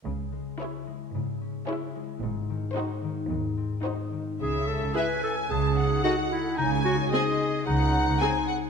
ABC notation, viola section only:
X:1
M:4/4
L:1/8
Q:1/4=111
K:C#m
V:1 name="Viola section"
z2 E2 z2 E2 | z2 D2 z2 D2 | z2 [EG]2 z2 [DA]2 | z2 [^B,G]2 z2 [B,G]2 |]